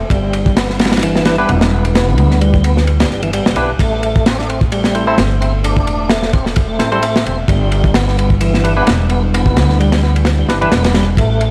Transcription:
0.10 G1 G3 D4 E4 B4, kick, ride
0.33 ride
0.46 kick
0.56 B3, snare, ride
0.69 B3, snare
0.79 B3, snare, ride
0.85 snare, ride
0.92 snare, ride
0.97 snare, ride
1.03 E3, ride
1.16 snare
1.25 D4 E4 G4 B4, snare, ride
1.38 B3 D4 E4 G4 B4
1.49 E1 B3, ride
1.61 snare, ride
1.72 B3
1.85 ride
1.95 B3, snare, ride
2.18 D2, ride
2.31 snare
2.41 G3, ride
2.54 kick
2.64 B3, ride
2.77 snare
2.87 ride
3.00 G3, snare, ride
3.10 G1, snare
3.23 E3, ride
3.33 G3, ride
3.46 E1, snare
3.56 B1 B3 D4 E4 G4 B4, ride
3.79 A1 A3 A4 C5 E5, kick, ride
4.03 ride
4.16 kick
4.26 C4, snare, ride
4.39 D4, snare
4.49 C4, ride
4.61 kick
4.72 G3, ride
4.84 snare
4.95 C4 E4 A4 C5, ride
5.07 C4 E4 A4 C5
5.18 G1 C4, snare, ride
5.41 C4, ride
5.64 D4, ride
5.76 kick
5.87 E1, ride
6.09 A3, snare, ride
6.22 snare
6.33 C4, kick, ride
6.46 snare
6.56 kick, ride
6.69 A3
6.79 A1 C4 E4 A4 C5, snare, ride
6.92 G3 C4 E4 A4 C5, ride
7.03 A3, ride
7.16 snare
7.25 E1 C4, ride
7.48 G1 G3 D4 E4 B4, kick, ride
7.72 ride
7.84 kick
7.94 B3, snare, ride
8.08 B3, snare
8.18 B3, ride
8.30 kick
8.41 E3, ride
8.54 snare
8.64 D4 E4 G4 B4, ride
8.77 B3 D4 E4 G4 B4
8.87 E1 B3, snare, ride
9.10 B3, ride
9.34 B3, ride
9.46 kick
9.56 D2, snare, ride
9.69 snare
9.80 G3, ride
9.92 snare, ride
10.03 B3, snare
10.16 ride
10.25 snare, ride
10.39 G3
10.49 G1 D4 E4 G4 B4, snare, ride
10.61 E3 D4 E4 G4 B4, ride
10.72 E1 B3, snare, ride
10.84 B3, snare, ride
10.94 G3, snare, ride
11.17 A1 A3 A4 C5, kick, ride
11.41 ride

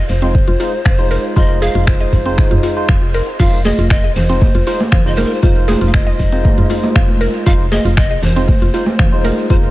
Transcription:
0.08 F1 C5, open hi-hat
0.22 G#3 C4 D#4 F4 C5
0.35 kick
0.48 F1 F4
0.60 G#3 D#4 F4 C5, open hi-hat
0.85 F1 F5, finger snap, kick
0.99 G#3 D#4 F4 C5
1.11 A#4, open hi-hat
1.36 F1 G#3 D#4 F4 C5 D#5, kick
1.61 G#4 F5, open hi-hat
1.75 F1 F4
1.87 C5, finger snap, kick
2.00 D#5
2.13 F1, kick, mid tom, open hi-hat
2.26 G#3 C4 D#4 F4 C5
2.38 finger snap, kick
2.51 F1 F4, mid tom
2.63 F4, open hi-hat
2.76 G#3 D#4 F4 C5
2.89 F1 F5, finger snap, kick
3.14 A#4, open hi-hat
3.39 F1 G#3 D#4 F4 C5 F5, kick, crash, tambourine
3.53 tambourine
3.65 G#4 D#5, open hi-hat, high conga
3.78 F1 F4, tambourine
3.90 D#5, finger snap, kick, tambourine
4.04 D#5, tambourine
4.15 F1 C5, open hi-hat, low conga
4.29 G#3 C4 D#4 F4 C5, tambourine
4.41 kick, tambourine, high conga
4.55 F1 F4, tambourine
4.67 G#3 D#4 F4 C5, open hi-hat
4.80 tambourine, high conga
4.92 F1 F5, finger snap, kick, tambourine, low conga
5.06 G#3 D#4 F4 C5 D#5, tambourine
5.15 A#4 C5, open hi-hat, high conga
5.25 A#4
5.30 tambourine
5.34 C5
5.42 F1 G#3 D#4 F4 C5, kick, tambourine
5.57 tambourine
5.68 G#4 C5, open hi-hat, high conga
5.81 F1 F4, tambourine
5.87 F5
5.93 D#5, finger snap, kick
6.07 D#5, tambourine
6.19 F1, kick, open hi-hat
6.32 G#3 C4 D#4 F4 C5, tambourine
6.44 kick, tambourine, high conga
6.58 F1 F4, mid tom, tambourine
6.70 F4, open hi-hat, high conga
6.83 tambourine, high conga
6.95 F1 F5, finger snap, kick, tambourine
7.09 tambourine, high conga
7.21 A#4, open hi-hat
7.34 tambourine
7.46 F1 G#3 D#4 F4 C5 F5, kick, tambourine
7.60 tambourine
7.72 G#4 D#5, open hi-hat, high conga
7.85 F1 F4, tambourine
7.97 D#5, finger snap, kick
8.11 D#5, tambourine
8.22 F1 C5, open hi-hat, low conga
8.36 G#3 C4 D#4 F4 C5, tambourine
8.48 kick, tambourine, high conga
8.61 F1 F4, tambourine
8.74 G#3 D#4 F4 C5, open hi-hat
8.86 tambourine, high conga
8.99 F1 F5, finger snap, kick, tambourine, low conga
9.12 G#3 D#4 F4 C5, tambourine
9.24 A#4, open hi-hat, high conga
9.38 tambourine
9.50 F1 G#3 D#4 F4 C5, kick, tambourine
9.63 tambourine

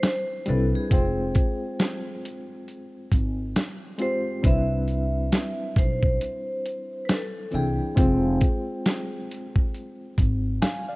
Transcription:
Already playing: C5
0.03 snare, closed hi-hat
0.46 C2 G3 C4 D4 E4 A4, closed hi-hat
0.50 B4
0.75 G#4
0.90 F1 G#3 C4 F4 G5, kick, closed hi-hat
0.94 C5
1.35 kick, closed hi-hat
1.79 snare, closed hi-hat
2.25 closed hi-hat
2.68 closed hi-hat
3.12 G#1, kick, closed hi-hat
3.56 snare, closed hi-hat
3.98 G#3 C4 F4 G4 C5, closed hi-hat
4.02 C5
4.43 C2 G3 C4 D4 E4 E5, kick, closed hi-hat
4.47 B4
4.88 closed hi-hat
5.32 snare, closed hi-hat
5.76 B1 C5, kick, closed hi-hat
6.03 kick
6.21 closed hi-hat
6.66 closed hi-hat
7.05 B4, closed hi-hat
7.09 A4, snare
7.51 C2 E3 C4 D4 E4, closed hi-hat
7.55 G#4 G5
7.95 F1 G#3 C4 F4 G5, kick, closed hi-hat
7.99 C5
8.41 kick, closed hi-hat
8.86 snare, closed hi-hat
9.31 closed hi-hat
9.56 kick
9.74 closed hi-hat
10.18 G#1, kick, closed hi-hat
10.62 F5 G#5, snare, closed hi-hat
10.88 D5 F5

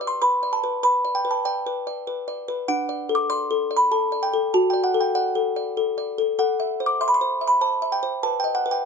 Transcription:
Already playing: G4 B4
0.01 D5
0.07 C6
0.22 B4 B5
0.43 D5
0.53 A5
0.64 B4
0.83 B4 B5
1.05 D5
1.15 G5
1.25 B4
1.31 A5
1.45 D5 G5
1.67 B4
1.87 D5
2.07 B4
2.28 D5
2.48 B4
2.68 D4 F#5
2.89 D5
3.09 A4
3.15 D6
3.30 D5 C6
3.51 A4
3.71 D5
3.77 B5
3.92 A4 A5
4.12 D5
4.23 G5
4.33 A4
4.54 F#4 A5
4.70 D5 G5
4.84 F#5
4.94 A4
5.00 G5
5.15 D5 F#5
5.35 A4
5.56 D5
5.77 A4
5.98 D5
6.18 A4
6.39 A4 F#5
6.60 E5
6.80 C5
6.86 D6
7.01 E5 C6
7.08 B5
7.14 C6
7.21 C5
7.41 E5
7.47 B5
7.61 C5 A5
7.82 E5
7.92 G5
8.03 C5
8.23 B4 A5
8.40 G5
8.44 D#5
8.55 F#5
8.66 B4
8.71 G5

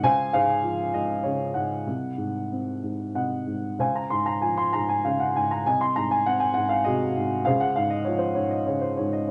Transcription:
0.03 C#2 C5 F5 G#5
0.33 G#2 G#4 C5 F5
0.63 F3
0.94 G#2 D#5
1.23 C#3 C#5
1.54 G#2 D#5 F#5
1.87 C2
2.18 G#2
2.51 C4
2.83 G#2
3.15 C3 D#5 F#5
3.47 G#2
3.78 C#2 C5 F5 G#5
3.96 A#5
4.10 G#2 C6
4.26 A#5
4.42 F3 G#5
4.57 C6
4.73 G#2 A#5
4.89 G#5
5.05 C#3 F5
5.20 F#5
5.36 G#2 G#5
5.51 A#5
5.66 C2 D#5 G#5
5.81 C6
5.96 G#2 A#5
6.11 G#5
6.26 C4 F#5
6.40 G#5
6.54 G#2 F#5
6.69 F5
6.84 C3 F#4 G#4 D#5
7.16 G#2
7.45 C#2 G#4 C5 F5
7.60 F#5
7.76 G#2 F5
7.90 D#5
8.05 F3 C#5
8.18 C5
8.35 G#2 C#5
8.50 D#5
8.66 C#3 C#5
8.81 C5
8.97 G#2 C#5
9.13 D#5

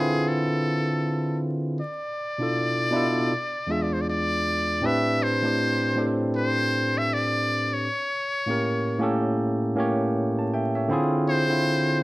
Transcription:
Already playing: D3 C4 E4 F4 G#4 B4 C5
0.28 A4
1.80 D5
2.38 B2 D4 E4 F4
2.43 A4
2.91 B2 D4 E4 F4
2.96 A4
3.67 E2 G#3 D4 F4
3.71 G#4 E5
3.82 D5
3.93 C5
4.01 D5
4.10 D5
4.81 A2 C4 D4 G4
4.85 B4 E5
5.23 C5
5.42 A2 C4 D4 G4
5.47 C5
5.96 A2 C4 D4 G4
6.00 A4
6.07 C5
6.36 C5
6.98 E5
7.14 D5
7.74 C#5
8.46 A2 A#3 C#4 G4
8.51 A#4
8.99 A2 A#3 C#4 G4
9.03 A4
9.75 A2 A#3 C#4 G4
9.80 C#5
10.39 A5
10.54 E5 G5
10.75 C#5 E5
10.88 D3 C4 E4 F4
10.93 G#4
11.29 C5
11.48 D3 C4 E4 F4
11.53 C5

